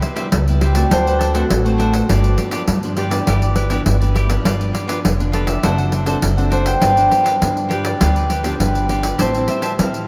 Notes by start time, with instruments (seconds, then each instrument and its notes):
Already playing: nylon-string guitar C3
0.01 cavaquinho G4 B4 C5 E5, pandeiro
0.16 nylon-string guitar G3 B3 E4, cavaquinho G4 B4 C5 E5, pandeiro
0.32 upright bass C#2, nylon-string guitar G2, pandeiro
0.48 nylon-string guitar G3 B3 E4, pandeiro
0.61 cavaquinho G4 B4 C5 E5, harp G4, pandeiro
0.75 nylon-string guitar A3 C4 F#4, cavaquinho B4 C5 E5, harp D5, pandeiro
0.91 upright bass D2, nylon-string guitar D3, cavaquinho D4 A4 C5 F#5, harp C5, pandeiro
1.06 cavaquinho A4 C5 F#5, harp B4, pandeiro
1.19 cavaquinho D4 A4 C5 F#5, harp A4, pandeiro
1.34 nylon-string guitar A3 C4 F#4, cavaquinho D4 A4 C5 F#5, harp F#4, pandeiro
1.50 upright bass A1, nylon-string guitar A2, pandeiro
1.65 nylon-string guitar A3 C4 F#4, cavaquinho A4 C5 F#5, pandeiro
1.78 cavaquinho D4 A4 C5 F#5, pandeiro
1.92 cavaquinho A4 C5 F#5, pandeiro
2.09 upright bass G1, nylon-string guitar G2 F3 B3 D4, cavaquinho F4 G4 B4 D5, pandeiro
2.24 pandeiro
2.37 cavaquinho F4 G4 B4 D5, pandeiro
2.51 nylon-string guitar F3 B3 D4, cavaquinho F4 G4 B4 D5, pandeiro
2.68 upright bass G2, nylon-string guitar D3, pandeiro
2.83 nylon-string guitar F3 B3 D4, pandeiro
2.97 cavaquinho F4 G4 B4 D5, harp G4, pandeiro
3.10 nylon-string guitar E3 B3 D4, cavaquinho G4 B4 D5, harp D5, pandeiro
3.27 upright bass G1, nylon-string guitar G2, cavaquinho E4 G4 B4 D5, pandeiro
3.42 cavaquinho G4 B4 D5, pandeiro
3.56 cavaquinho E4 G4 B4 D5, harp B4, pandeiro
3.70 nylon-string guitar E3 B3 D4, cavaquinho E4 G4 B4 D5, pandeiro
3.86 upright bass G1, nylon-string guitar G2, pandeiro
4.00 nylon-string guitar E3 B3 D4, cavaquinho G4 B4 D5, pandeiro
4.14 cavaquinho E4 G4 B4 D5, pandeiro
4.29 nylon-string guitar F3 B3 D4, cavaquinho G4 B4 D5, pandeiro
4.45 upright bass G1, nylon-string guitar G2, cavaquinho F4 G4 B4 D5, pandeiro
4.61 pandeiro
4.73 cavaquinho F4 G4 B4 D5, pandeiro
4.87 nylon-string guitar F3 B3 D4, cavaquinho F4 G4 B4 D5, pandeiro
5.04 upright bass F1, nylon-string guitar D3, pandeiro
5.19 nylon-string guitar F3 B3 D4, pandeiro
5.32 cavaquinho F4 G4 B4 D5, harp A4, pandeiro
5.47 cavaquinho G4 B4 D5, harp E5, pandeiro
5.63 upright bass F#1, nylon-string guitar F#3 C4 D4 A4, cavaquinho D4 A4 C5 F#5, pandeiro
5.78 cavaquinho A4 C5 F#5, pandeiro
5.92 cavaquinho D4 A4 C5 F#5, pandeiro
6.06 nylon-string guitar C4 D4 A4, cavaquinho D4 A4 C5 F#5, pandeiro
6.22 upright bass F#1, nylon-string guitar F#3, pandeiro
6.37 nylon-string guitar C4 D4 A4, cavaquinho A4 C5 F#5, pandeiro
6.50 cavaquinho D4 A4 C5 F#5, harp C5, pandeiro
6.65 cavaquinho A4 C5 F#5, harp G5, pandeiro
6.80 upright bass G1, nylon-string guitar G2 F3 B3 D4, cavaquinho F4 G4 B4 D5, pandeiro
6.97 nylon-string guitar F3 B3 D4, pandeiro
7.09 cavaquinho F4 G4 B4 D5, pandeiro
7.24 cavaquinho F4 G4 B4 D5, pandeiro
7.41 upright bass G2, nylon-string guitar D3 F3 B3 D4, pandeiro
7.57 pandeiro
7.69 cavaquinho F4 G4 B4 D5, pandeiro
7.73 harp G4
7.83 cavaquinho G4 B4 D5, harp D5, pandeiro
8.00 upright bass D2, nylon-string guitar G2 F3 B3 D4, cavaquinho F4 G4 B4 D5, pandeiro
8.15 cavaquinho G4 B4 D5, pandeiro
8.29 cavaquinho F4 G4 B4 D5, harp B4, pandeiro
8.43 nylon-string guitar F3 B3 D4, cavaquinho F4 G4 B4 D5, harp G4, pandeiro
8.60 upright bass G1, nylon-string guitar D3, harp B4, pandeiro
8.75 cavaquinho G4 B4 D5, pandeiro
8.89 nylon-string guitar F3 B3 D4, cavaquinho F4 G4 B4 D5, pandeiro
9.03 cavaquinho G4 B4 D5, pandeiro
9.18 upright bass A1, nylon-string guitar A2 G3 C4 E4, cavaquinho G4 C5 E5 A5, harp C5, pandeiro
9.34 nylon-string guitar G3 C4 E4, pandeiro
9.47 cavaquinho G4 C5 E5 A5, harp E5, pandeiro
9.62 cavaquinho G4 C5 E5 A5, harp E5, pandeiro
9.78 upright bass A2, nylon-string guitar E3 G3 C4 E4, harp F5, pandeiro
9.94 pandeiro